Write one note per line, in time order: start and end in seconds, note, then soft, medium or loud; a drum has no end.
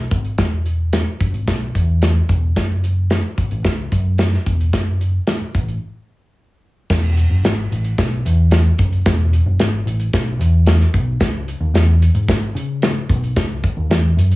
0.11 0.39 G#1 medium
0.11 kick medium
0.11 closed hi-hat medium
0.25 closed hi-hat soft
0.38 1.03 E1 medium
0.38 kick loud
0.38 snare medium
0.38 closed hi-hat medium
0.66 closed hi-hat medium
0.93 snare loud
0.93 closed hi-hat medium
1.21 1.31 F#1 medium
1.21 kick medium
1.21 closed hi-hat medium
1.34 1.48 G#1 medium
1.34 closed hi-hat soft
1.48 1.69 B1 medium
1.48 kick medium
1.48 snare loud
1.48 closed hi-hat medium
1.75 2.19 E2 medium
1.75 kick medium
1.75 closed hi-hat medium
2.02 snare loud
2.02 closed hi-hat medium
2.29 2.51 E1 medium
2.29 kick medium
2.29 closed hi-hat medium
2.56 3.21 F#1 medium
2.56 kick medium
2.56 snare loud
2.56 closed hi-hat medium
2.84 closed hi-hat medium
3.10 snare loud
3.10 closed hi-hat medium
3.38 3.49 G#1 medium
3.38 kick medium
3.38 closed hi-hat medium
3.51 3.62 A1 medium
3.51 closed hi-hat soft
3.64 3.86 C#2 medium
3.64 kick medium
3.64 snare loud
3.64 closed hi-hat medium
3.92 4.36 F#2 medium
3.92 kick medium
3.92 closed hi-hat medium
4.18 snare loud
4.18 closed hi-hat medium
4.33 snare soft
4.46 4.68 E1 medium
4.46 kick medium
4.46 closed hi-hat medium
4.61 closed hi-hat soft
4.73 5.17 F#1 medium
4.73 kick medium
4.73 snare medium
4.73 closed hi-hat medium
5.01 closed hi-hat medium
5.27 snare loud
5.27 closed hi-hat medium
5.40 muted picked electric bass stroke soft
5.55 5.76 A1 medium
5.55 kick medium
5.55 closed hi-hat medium
5.68 closed hi-hat soft
6.90 7.23 E1 loud
6.90 kick loud
6.90 snare loud
6.90 crash loud
7.17 closed hi-hat medium
7.29 7.41 F#1 medium
7.43 7.65 G#1 medium
7.43 snare loud
7.43 closed hi-hat medium
7.71 7.93 A1 medium
7.71 closed hi-hat medium
7.84 closed hi-hat soft
7.98 8.20 B1 loud
7.98 kick medium
7.98 snare loud
7.98 closed hi-hat loud
8.25 8.68 E2 loud
8.25 closed hi-hat medium
8.51 snare loud
8.51 closed hi-hat medium
8.78 9.01 F#1 medium
8.78 kick loud
8.78 closed hi-hat medium
8.93 closed hi-hat soft
9.06 9.38 E1 loud
9.06 kick loud
9.06 snare loud
9.06 closed hi-hat loud
9.33 closed hi-hat medium
9.46 9.57 F#1 loud
9.59 9.81 G#1 medium
9.59 snare loud
9.59 closed hi-hat loud
9.86 10.08 A1 medium
9.86 closed hi-hat medium
10.00 closed hi-hat medium
10.13 10.35 B1 medium
10.13 kick loud
10.13 snare loud
10.13 closed hi-hat loud
10.39 10.83 E2 loud
10.39 closed hi-hat medium
10.66 snare loud
10.66 closed hi-hat medium
10.80 snare soft
10.94 11.21 B1 medium
10.94 kick medium
10.94 closed hi-hat medium
11.20 11.53 C#2 loud
11.20 kick loud
11.20 snare loud
11.20 closed hi-hat medium
11.48 closed hi-hat medium
11.60 11.72 D#2 medium
11.74 12.07 E2 loud
11.74 snare loud
11.74 closed hi-hat medium
12.02 closed hi-hat medium
12.15 12.26 G#2 loud
12.15 closed hi-hat medium
12.28 12.50 G#1 medium
12.28 kick loud
12.28 snare loud
12.28 closed hi-hat loud
12.55 12.99 C#3 loud
12.55 closed hi-hat medium
12.82 snare loud
12.82 closed hi-hat medium
13.09 13.31 B1 medium
13.09 kick loud
13.09 closed hi-hat medium
13.24 closed hi-hat soft
13.36 13.69 C#2 loud
13.36 kick loud
13.36 snare loud
13.36 closed hi-hat medium
13.64 kick medium
13.64 closed hi-hat medium
13.77 13.88 D#2 medium
13.90 14.12 E2 medium
13.90 snare loud
13.90 closed hi-hat loud
14.17 14.36 F#2 medium
14.17 closed hi-hat medium
14.31 closed hi-hat soft